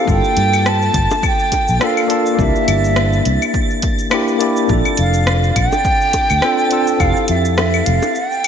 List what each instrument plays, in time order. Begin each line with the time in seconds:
Already playing: tine electric piano C4 A4, flute F5, synth texture A6
0.05 fretless electric bass G1, tine electric piano A#3 D4, kick, shaker
0.10 tine electric piano F4 A4, flute G5
0.24 shaker
0.37 fretless electric bass G2, closed hi-hat
0.53 claves, shaker
0.66 flute A5, cross-stick, shaker
0.82 shaker
0.94 fretless electric bass G1, kick, closed hi-hat
1.10 high bongo, shaker
1.23 kick, claves, shaker
1.27 flute G5
1.39 shaker
1.52 kick, closed hi-hat, high bongo
1.68 fretless electric bass A#1, shaker
1.79 tine electric piano A#3 D4 F4 A4, cross-stick, shaker
1.84 flute F5
1.97 claves, shaker
2.07 tine electric piano A#3 D4 F4 A4, closed hi-hat
2.26 shaker
2.34 tine electric piano A#3 D4, flute F5
2.39 fretless electric bass C2, tine electric piano E4 G4, flute E5, kick, shaker
2.56 shaker
2.68 fretless electric bass G1, closed hi-hat, claves
2.84 shaker
2.96 cross-stick, shaker
3.13 shaker
3.25 fretless electric bass C2, closed hi-hat
3.42 claves, shaker
3.54 kick, shaker
3.70 shaker
3.82 kick, closed hi-hat
3.99 shaker
4.10 tine electric piano A#3 D4 E4 G4, cross-stick, claves, shaker
4.28 shaker
4.38 tine electric piano A#3 D4 E4 G4, closed hi-hat
4.57 shaker
4.66 fretless electric bass A#1, tine electric piano C4 D4, kick, shaker
4.71 tine electric piano F4 A4
4.85 claves, shaker
4.97 fretless electric bass F1, flute F5, closed hi-hat
5.14 shaker
5.27 cross-stick, shaker
5.43 shaker
5.56 fretless electric bass A#1, flute G5, kick, closed hi-hat, claves
5.72 high bongo, shaker
5.85 kick, shaker
6.01 shaker
6.13 kick, closed hi-hat, high bongo
6.30 fretless electric bass D2, claves, shaker
6.41 tine electric piano C4 D4 F4 A4, cross-stick, shaker
6.59 shaker
6.69 tine electric piano C4 D4 F4 A4, closed hi-hat
6.87 shaker
6.97 fretless electric bass F1, tine electric piano C4 E4, flute F5, kick, claves, shaker
7.02 tine electric piano G4 A4
7.16 shaker
7.28 fretless electric bass F2, flute E5, closed hi-hat
7.45 shaker
7.58 flute E5, cross-stick, high bongo, shaker
7.74 claves, shaker
7.85 fretless electric bass F1, flute F5, closed hi-hat
8.02 high bongo, shaker
8.15 flute G5, shaker
8.32 shaker
8.44 closed hi-hat, claves